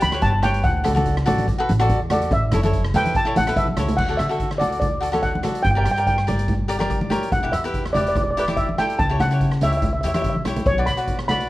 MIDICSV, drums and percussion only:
0, 0, Header, 1, 2, 480
1, 0, Start_track
1, 0, Key_signature, 2, "major"
1, 0, Tempo, 417246
1, 749, Time_signature, 4, 2, 24, 8
1, 13222, End_track
2, 0, Start_track
2, 0, Title_t, "Drums"
2, 6, Note_on_c, 9, 42, 90
2, 30, Note_on_c, 9, 63, 78
2, 121, Note_off_c, 9, 42, 0
2, 137, Note_on_c, 9, 37, 85
2, 137, Note_on_c, 9, 42, 60
2, 145, Note_off_c, 9, 63, 0
2, 247, Note_off_c, 9, 42, 0
2, 247, Note_on_c, 9, 42, 64
2, 252, Note_off_c, 9, 37, 0
2, 253, Note_on_c, 9, 36, 81
2, 362, Note_off_c, 9, 42, 0
2, 368, Note_off_c, 9, 36, 0
2, 488, Note_on_c, 9, 37, 80
2, 488, Note_on_c, 9, 42, 77
2, 506, Note_on_c, 9, 64, 73
2, 603, Note_off_c, 9, 37, 0
2, 603, Note_off_c, 9, 42, 0
2, 618, Note_on_c, 9, 42, 67
2, 621, Note_off_c, 9, 64, 0
2, 728, Note_off_c, 9, 42, 0
2, 728, Note_on_c, 9, 42, 66
2, 734, Note_on_c, 9, 36, 111
2, 843, Note_off_c, 9, 42, 0
2, 849, Note_off_c, 9, 36, 0
2, 972, Note_on_c, 9, 37, 82
2, 972, Note_on_c, 9, 42, 86
2, 988, Note_on_c, 9, 64, 71
2, 1087, Note_off_c, 9, 37, 0
2, 1087, Note_off_c, 9, 42, 0
2, 1101, Note_on_c, 9, 42, 62
2, 1103, Note_off_c, 9, 64, 0
2, 1116, Note_on_c, 9, 63, 78
2, 1213, Note_off_c, 9, 42, 0
2, 1213, Note_on_c, 9, 42, 57
2, 1215, Note_on_c, 9, 36, 83
2, 1232, Note_off_c, 9, 63, 0
2, 1328, Note_off_c, 9, 42, 0
2, 1330, Note_off_c, 9, 36, 0
2, 1347, Note_on_c, 9, 37, 92
2, 1455, Note_on_c, 9, 42, 78
2, 1462, Note_off_c, 9, 37, 0
2, 1470, Note_on_c, 9, 63, 72
2, 1470, Note_on_c, 9, 64, 80
2, 1571, Note_off_c, 9, 42, 0
2, 1585, Note_off_c, 9, 63, 0
2, 1585, Note_off_c, 9, 64, 0
2, 1589, Note_on_c, 9, 42, 60
2, 1591, Note_on_c, 9, 63, 74
2, 1700, Note_on_c, 9, 36, 108
2, 1704, Note_off_c, 9, 42, 0
2, 1705, Note_on_c, 9, 42, 59
2, 1706, Note_off_c, 9, 63, 0
2, 1815, Note_off_c, 9, 36, 0
2, 1821, Note_off_c, 9, 42, 0
2, 1944, Note_on_c, 9, 42, 78
2, 1946, Note_on_c, 9, 63, 74
2, 2059, Note_off_c, 9, 42, 0
2, 2061, Note_off_c, 9, 63, 0
2, 2066, Note_on_c, 9, 37, 80
2, 2066, Note_on_c, 9, 42, 56
2, 2180, Note_on_c, 9, 36, 90
2, 2181, Note_off_c, 9, 42, 0
2, 2181, Note_on_c, 9, 42, 63
2, 2182, Note_off_c, 9, 37, 0
2, 2295, Note_off_c, 9, 36, 0
2, 2296, Note_off_c, 9, 42, 0
2, 2419, Note_on_c, 9, 37, 89
2, 2419, Note_on_c, 9, 42, 84
2, 2424, Note_on_c, 9, 64, 67
2, 2534, Note_off_c, 9, 37, 0
2, 2534, Note_off_c, 9, 42, 0
2, 2539, Note_off_c, 9, 64, 0
2, 2551, Note_on_c, 9, 42, 62
2, 2661, Note_on_c, 9, 36, 111
2, 2665, Note_off_c, 9, 42, 0
2, 2665, Note_on_c, 9, 42, 63
2, 2776, Note_off_c, 9, 36, 0
2, 2780, Note_off_c, 9, 42, 0
2, 2898, Note_on_c, 9, 37, 90
2, 2898, Note_on_c, 9, 42, 81
2, 2901, Note_on_c, 9, 64, 72
2, 3013, Note_off_c, 9, 37, 0
2, 3013, Note_off_c, 9, 42, 0
2, 3016, Note_off_c, 9, 64, 0
2, 3031, Note_on_c, 9, 42, 67
2, 3038, Note_on_c, 9, 63, 79
2, 3143, Note_on_c, 9, 36, 87
2, 3146, Note_off_c, 9, 42, 0
2, 3147, Note_on_c, 9, 42, 64
2, 3153, Note_off_c, 9, 63, 0
2, 3258, Note_off_c, 9, 36, 0
2, 3262, Note_off_c, 9, 42, 0
2, 3275, Note_on_c, 9, 37, 92
2, 3381, Note_on_c, 9, 42, 88
2, 3386, Note_on_c, 9, 63, 70
2, 3386, Note_on_c, 9, 64, 76
2, 3390, Note_off_c, 9, 37, 0
2, 3496, Note_off_c, 9, 42, 0
2, 3501, Note_off_c, 9, 63, 0
2, 3501, Note_off_c, 9, 64, 0
2, 3512, Note_on_c, 9, 42, 65
2, 3516, Note_on_c, 9, 63, 71
2, 3622, Note_on_c, 9, 36, 108
2, 3623, Note_off_c, 9, 42, 0
2, 3623, Note_on_c, 9, 42, 62
2, 3631, Note_off_c, 9, 63, 0
2, 3737, Note_off_c, 9, 36, 0
2, 3738, Note_off_c, 9, 42, 0
2, 3866, Note_on_c, 9, 42, 89
2, 3867, Note_on_c, 9, 63, 77
2, 3867, Note_on_c, 9, 64, 73
2, 3981, Note_off_c, 9, 42, 0
2, 3982, Note_off_c, 9, 63, 0
2, 3982, Note_off_c, 9, 64, 0
2, 3995, Note_on_c, 9, 37, 84
2, 3995, Note_on_c, 9, 42, 65
2, 4100, Note_on_c, 9, 36, 93
2, 4102, Note_off_c, 9, 42, 0
2, 4102, Note_on_c, 9, 42, 72
2, 4110, Note_off_c, 9, 37, 0
2, 4216, Note_off_c, 9, 36, 0
2, 4217, Note_off_c, 9, 42, 0
2, 4231, Note_on_c, 9, 63, 57
2, 4336, Note_on_c, 9, 37, 88
2, 4336, Note_on_c, 9, 42, 84
2, 4340, Note_on_c, 9, 64, 61
2, 4346, Note_off_c, 9, 63, 0
2, 4451, Note_off_c, 9, 37, 0
2, 4451, Note_off_c, 9, 42, 0
2, 4455, Note_off_c, 9, 64, 0
2, 4470, Note_on_c, 9, 42, 67
2, 4470, Note_on_c, 9, 64, 77
2, 4581, Note_on_c, 9, 36, 102
2, 4583, Note_on_c, 9, 49, 84
2, 4585, Note_off_c, 9, 42, 0
2, 4585, Note_off_c, 9, 64, 0
2, 4696, Note_off_c, 9, 36, 0
2, 4698, Note_off_c, 9, 49, 0
2, 4822, Note_on_c, 9, 37, 82
2, 4822, Note_on_c, 9, 42, 73
2, 4937, Note_off_c, 9, 37, 0
2, 4937, Note_off_c, 9, 42, 0
2, 4954, Note_on_c, 9, 42, 60
2, 5060, Note_off_c, 9, 42, 0
2, 5060, Note_on_c, 9, 36, 81
2, 5060, Note_on_c, 9, 42, 52
2, 5175, Note_off_c, 9, 36, 0
2, 5175, Note_off_c, 9, 42, 0
2, 5189, Note_on_c, 9, 37, 82
2, 5298, Note_on_c, 9, 42, 74
2, 5304, Note_off_c, 9, 37, 0
2, 5304, Note_on_c, 9, 64, 65
2, 5413, Note_off_c, 9, 42, 0
2, 5419, Note_off_c, 9, 64, 0
2, 5432, Note_on_c, 9, 42, 55
2, 5539, Note_on_c, 9, 36, 101
2, 5540, Note_off_c, 9, 42, 0
2, 5540, Note_on_c, 9, 42, 55
2, 5545, Note_on_c, 9, 64, 56
2, 5654, Note_off_c, 9, 36, 0
2, 5655, Note_off_c, 9, 42, 0
2, 5660, Note_off_c, 9, 64, 0
2, 5778, Note_on_c, 9, 42, 75
2, 5893, Note_off_c, 9, 42, 0
2, 5902, Note_on_c, 9, 37, 75
2, 5902, Note_on_c, 9, 42, 52
2, 5914, Note_on_c, 9, 63, 64
2, 6011, Note_off_c, 9, 42, 0
2, 6011, Note_on_c, 9, 42, 58
2, 6016, Note_on_c, 9, 36, 81
2, 6017, Note_off_c, 9, 37, 0
2, 6029, Note_off_c, 9, 63, 0
2, 6126, Note_off_c, 9, 42, 0
2, 6131, Note_off_c, 9, 36, 0
2, 6159, Note_on_c, 9, 63, 62
2, 6252, Note_on_c, 9, 37, 76
2, 6252, Note_on_c, 9, 42, 73
2, 6267, Note_off_c, 9, 63, 0
2, 6267, Note_on_c, 9, 63, 57
2, 6267, Note_on_c, 9, 64, 59
2, 6367, Note_off_c, 9, 37, 0
2, 6367, Note_off_c, 9, 42, 0
2, 6382, Note_off_c, 9, 63, 0
2, 6382, Note_off_c, 9, 64, 0
2, 6384, Note_on_c, 9, 42, 60
2, 6493, Note_off_c, 9, 42, 0
2, 6493, Note_on_c, 9, 42, 63
2, 6497, Note_on_c, 9, 36, 105
2, 6608, Note_off_c, 9, 42, 0
2, 6612, Note_off_c, 9, 36, 0
2, 6736, Note_on_c, 9, 37, 80
2, 6736, Note_on_c, 9, 42, 84
2, 6851, Note_off_c, 9, 37, 0
2, 6851, Note_off_c, 9, 42, 0
2, 6870, Note_on_c, 9, 42, 63
2, 6980, Note_on_c, 9, 36, 83
2, 6985, Note_off_c, 9, 42, 0
2, 6985, Note_on_c, 9, 42, 60
2, 7095, Note_off_c, 9, 36, 0
2, 7100, Note_off_c, 9, 42, 0
2, 7110, Note_on_c, 9, 37, 76
2, 7225, Note_off_c, 9, 37, 0
2, 7226, Note_on_c, 9, 42, 85
2, 7231, Note_on_c, 9, 64, 66
2, 7341, Note_off_c, 9, 42, 0
2, 7346, Note_off_c, 9, 64, 0
2, 7351, Note_on_c, 9, 42, 66
2, 7457, Note_off_c, 9, 42, 0
2, 7457, Note_on_c, 9, 42, 56
2, 7459, Note_on_c, 9, 36, 101
2, 7468, Note_on_c, 9, 64, 57
2, 7572, Note_off_c, 9, 42, 0
2, 7574, Note_off_c, 9, 36, 0
2, 7583, Note_off_c, 9, 64, 0
2, 7701, Note_on_c, 9, 42, 86
2, 7816, Note_off_c, 9, 42, 0
2, 7829, Note_on_c, 9, 63, 69
2, 7830, Note_on_c, 9, 37, 79
2, 7830, Note_on_c, 9, 42, 58
2, 7942, Note_on_c, 9, 36, 84
2, 7944, Note_off_c, 9, 63, 0
2, 7945, Note_off_c, 9, 37, 0
2, 7945, Note_off_c, 9, 42, 0
2, 7945, Note_on_c, 9, 42, 57
2, 8057, Note_off_c, 9, 36, 0
2, 8060, Note_off_c, 9, 42, 0
2, 8070, Note_on_c, 9, 63, 68
2, 8178, Note_off_c, 9, 63, 0
2, 8178, Note_on_c, 9, 63, 56
2, 8178, Note_on_c, 9, 64, 59
2, 8186, Note_on_c, 9, 37, 78
2, 8186, Note_on_c, 9, 42, 81
2, 8293, Note_off_c, 9, 63, 0
2, 8293, Note_off_c, 9, 64, 0
2, 8301, Note_off_c, 9, 37, 0
2, 8301, Note_off_c, 9, 42, 0
2, 8319, Note_on_c, 9, 42, 62
2, 8423, Note_on_c, 9, 36, 104
2, 8425, Note_off_c, 9, 42, 0
2, 8425, Note_on_c, 9, 42, 60
2, 8538, Note_off_c, 9, 36, 0
2, 8540, Note_off_c, 9, 42, 0
2, 8664, Note_on_c, 9, 37, 85
2, 8664, Note_on_c, 9, 42, 82
2, 8779, Note_off_c, 9, 37, 0
2, 8779, Note_off_c, 9, 42, 0
2, 8794, Note_on_c, 9, 42, 59
2, 8904, Note_on_c, 9, 36, 80
2, 8906, Note_off_c, 9, 42, 0
2, 8906, Note_on_c, 9, 42, 56
2, 9019, Note_off_c, 9, 36, 0
2, 9021, Note_off_c, 9, 42, 0
2, 9038, Note_on_c, 9, 37, 85
2, 9149, Note_on_c, 9, 64, 65
2, 9150, Note_on_c, 9, 42, 76
2, 9153, Note_off_c, 9, 37, 0
2, 9264, Note_off_c, 9, 64, 0
2, 9265, Note_off_c, 9, 42, 0
2, 9279, Note_on_c, 9, 42, 59
2, 9383, Note_on_c, 9, 36, 108
2, 9387, Note_off_c, 9, 42, 0
2, 9387, Note_on_c, 9, 42, 56
2, 9394, Note_on_c, 9, 64, 56
2, 9498, Note_off_c, 9, 36, 0
2, 9502, Note_off_c, 9, 42, 0
2, 9509, Note_off_c, 9, 64, 0
2, 9630, Note_on_c, 9, 42, 78
2, 9745, Note_off_c, 9, 42, 0
2, 9752, Note_on_c, 9, 37, 75
2, 9752, Note_on_c, 9, 42, 53
2, 9753, Note_on_c, 9, 63, 65
2, 9858, Note_off_c, 9, 42, 0
2, 9858, Note_on_c, 9, 42, 56
2, 9860, Note_on_c, 9, 36, 87
2, 9867, Note_off_c, 9, 37, 0
2, 9868, Note_off_c, 9, 63, 0
2, 9973, Note_off_c, 9, 42, 0
2, 9975, Note_off_c, 9, 36, 0
2, 9994, Note_on_c, 9, 63, 62
2, 10102, Note_on_c, 9, 37, 79
2, 10102, Note_on_c, 9, 42, 67
2, 10106, Note_off_c, 9, 63, 0
2, 10106, Note_on_c, 9, 63, 54
2, 10106, Note_on_c, 9, 64, 54
2, 10217, Note_off_c, 9, 37, 0
2, 10217, Note_off_c, 9, 42, 0
2, 10221, Note_off_c, 9, 63, 0
2, 10221, Note_off_c, 9, 64, 0
2, 10232, Note_on_c, 9, 42, 62
2, 10342, Note_on_c, 9, 36, 109
2, 10343, Note_off_c, 9, 42, 0
2, 10343, Note_on_c, 9, 42, 55
2, 10457, Note_off_c, 9, 36, 0
2, 10458, Note_off_c, 9, 42, 0
2, 10581, Note_on_c, 9, 63, 59
2, 10581, Note_on_c, 9, 64, 59
2, 10587, Note_on_c, 9, 37, 78
2, 10587, Note_on_c, 9, 42, 75
2, 10696, Note_off_c, 9, 63, 0
2, 10696, Note_off_c, 9, 64, 0
2, 10703, Note_off_c, 9, 37, 0
2, 10703, Note_off_c, 9, 42, 0
2, 10706, Note_on_c, 9, 42, 58
2, 10821, Note_off_c, 9, 42, 0
2, 10822, Note_on_c, 9, 36, 80
2, 10824, Note_on_c, 9, 42, 53
2, 10937, Note_off_c, 9, 36, 0
2, 10939, Note_off_c, 9, 42, 0
2, 10947, Note_on_c, 9, 37, 82
2, 11057, Note_on_c, 9, 42, 84
2, 11061, Note_on_c, 9, 64, 69
2, 11062, Note_off_c, 9, 37, 0
2, 11172, Note_off_c, 9, 42, 0
2, 11176, Note_off_c, 9, 64, 0
2, 11186, Note_on_c, 9, 42, 59
2, 11298, Note_off_c, 9, 42, 0
2, 11298, Note_on_c, 9, 42, 61
2, 11298, Note_on_c, 9, 64, 57
2, 11301, Note_on_c, 9, 36, 106
2, 11413, Note_off_c, 9, 42, 0
2, 11413, Note_off_c, 9, 64, 0
2, 11416, Note_off_c, 9, 36, 0
2, 11541, Note_on_c, 9, 42, 90
2, 11656, Note_off_c, 9, 42, 0
2, 11671, Note_on_c, 9, 37, 82
2, 11671, Note_on_c, 9, 42, 57
2, 11673, Note_on_c, 9, 63, 69
2, 11780, Note_off_c, 9, 63, 0
2, 11780, Note_on_c, 9, 63, 50
2, 11782, Note_off_c, 9, 42, 0
2, 11782, Note_on_c, 9, 36, 82
2, 11782, Note_on_c, 9, 42, 59
2, 11786, Note_off_c, 9, 37, 0
2, 11895, Note_off_c, 9, 63, 0
2, 11897, Note_off_c, 9, 36, 0
2, 11897, Note_off_c, 9, 42, 0
2, 11905, Note_on_c, 9, 63, 57
2, 12021, Note_off_c, 9, 63, 0
2, 12021, Note_on_c, 9, 64, 57
2, 12024, Note_on_c, 9, 37, 75
2, 12024, Note_on_c, 9, 42, 76
2, 12136, Note_off_c, 9, 64, 0
2, 12139, Note_off_c, 9, 37, 0
2, 12139, Note_off_c, 9, 42, 0
2, 12152, Note_on_c, 9, 42, 64
2, 12154, Note_on_c, 9, 64, 76
2, 12263, Note_off_c, 9, 42, 0
2, 12263, Note_on_c, 9, 36, 108
2, 12263, Note_on_c, 9, 42, 62
2, 12269, Note_off_c, 9, 64, 0
2, 12378, Note_off_c, 9, 36, 0
2, 12378, Note_off_c, 9, 42, 0
2, 12502, Note_on_c, 9, 37, 83
2, 12502, Note_on_c, 9, 42, 86
2, 12617, Note_off_c, 9, 37, 0
2, 12617, Note_off_c, 9, 42, 0
2, 12628, Note_on_c, 9, 42, 60
2, 12743, Note_off_c, 9, 42, 0
2, 12743, Note_on_c, 9, 42, 61
2, 12744, Note_on_c, 9, 36, 79
2, 12858, Note_off_c, 9, 42, 0
2, 12859, Note_off_c, 9, 36, 0
2, 12872, Note_on_c, 9, 37, 86
2, 12986, Note_on_c, 9, 64, 73
2, 12987, Note_off_c, 9, 37, 0
2, 12988, Note_on_c, 9, 42, 77
2, 13101, Note_off_c, 9, 64, 0
2, 13103, Note_off_c, 9, 42, 0
2, 13118, Note_on_c, 9, 42, 61
2, 13222, Note_off_c, 9, 42, 0
2, 13222, End_track
0, 0, End_of_file